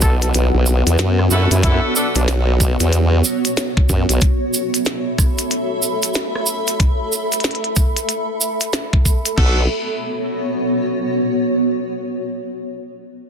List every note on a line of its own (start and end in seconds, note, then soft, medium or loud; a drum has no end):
0.00 0.32 B1 medium
0.00 5.16 B3 medium
0.00 0.40 E4 medium
0.00 5.72 F#4 medium
0.00 0.15 A4 medium
0.00 0.95 B4 medium
0.00 1.13 F#5 medium
0.00 kick loud
0.00 cross-stick medium
0.00 shaker loud
0.22 0.30 A4 medium
0.22 closed hi-hat medium
0.22 shaker medium
0.34 0.51 B1 loud
0.34 closed hi-hat medium
0.34 shaker soft
0.54 0.83 B1 loud
0.66 shaker medium
0.86 0.97 E2 loud
0.86 closed hi-hat medium
0.86 shaker medium
0.98 1.29 F#2 medium
0.98 6.31 C#5 medium
0.98 snare loud
0.98 closed hi-hat medium
0.98 shaker soft
1.19 cross-stick medium
1.31 1.48 F#2 medium
1.31 1.51 B3 medium
1.31 1.50 D4 medium
1.31 1.44 E4 medium
1.31 1.50 F#4 medium
1.31 1.50 A4 loud
1.31 shaker medium
1.51 1.80 F#2 loud
1.51 1.59 E4 medium
1.51 closed hi-hat medium
1.51 shaker medium
1.63 1.93 B3 medium
1.63 1.93 D4 medium
1.63 1.83 E4 medium
1.63 1.93 F#4 medium
1.63 1.93 A4 medium
1.63 kick loud
1.63 closed hi-hat medium
1.63 shaker soft
1.95 2.15 B3 medium
1.95 2.15 D4 medium
1.95 2.08 D4 medium
1.95 2.15 F#4 medium
1.95 2.15 A4 medium
1.95 shaker loud
2.15 2.77 B1 loud
2.15 2.24 D4 medium
2.15 closed hi-hat medium
2.15 shaker medium
2.28 snare loud
2.28 closed hi-hat medium
2.28 shaker soft
2.60 kick loud
2.60 shaker loud
2.80 3.23 E2 loud
2.80 closed hi-hat medium
2.80 shaker medium
2.93 closed hi-hat medium
2.93 shaker soft
3.24 shaker medium
3.45 closed hi-hat medium
3.45 shaker medium
3.57 snare loud
3.57 closed hi-hat medium
3.57 shaker soft
3.77 kick loud
3.89 4.06 F#2 loud
3.89 kick medium
3.89 shaker medium
4.09 4.19 B1 medium
4.09 closed hi-hat medium
4.09 shaker medium
4.21 9.38 A4 medium
4.21 kick loud
4.21 closed hi-hat medium
4.21 shaker soft
4.39 9.38 E5 medium
4.54 9.38 B5 medium
4.54 shaker medium
4.74 closed hi-hat medium
4.74 shaker medium
4.85 snare loud
4.85 closed hi-hat medium
4.85 shaker soft
5.18 kick loud
5.18 cross-stick soft
5.18 shaker medium
5.38 closed hi-hat medium
5.38 shaker medium
5.51 closed hi-hat medium
5.51 shaker soft
5.82 shaker medium
6.02 closed hi-hat medium
6.02 shaker medium
6.14 snare loud
6.14 closed hi-hat medium
6.14 shaker soft
6.35 cross-stick medium
6.46 shaker medium
6.67 closed hi-hat medium
6.67 shaker medium
6.80 kick loud
6.80 closed hi-hat medium
6.80 shaker soft
7.12 shaker medium
7.32 closed hi-hat soft
7.32 shaker medium
7.40 closed hi-hat soft
7.40 shaker soft
7.44 snare loud
7.44 closed hi-hat medium
7.51 closed hi-hat soft
7.55 closed hi-hat soft
7.64 closed hi-hat soft
7.76 kick loud
7.76 shaker loud
7.96 closed hi-hat medium
7.96 shaker medium
8.09 closed hi-hat medium
8.09 shaker soft
8.41 shaker loud
8.60 closed hi-hat medium
8.60 shaker medium
8.73 snare loud
8.73 closed hi-hat medium
8.73 shaker soft
8.93 kick loud
9.05 kick medium
9.05 shaker medium
9.25 closed hi-hat medium
9.25 shaker medium
9.37 9.67 B1 medium
9.37 9.63 B3 medium
9.37 11.92 B3 medium
9.37 9.63 D4 medium
9.37 9.63 F#4 medium
9.37 9.63 A4 medium
9.37 kick loud
9.37 crash medium
9.50 11.92 F#4 medium
9.60 11.92 C#5 medium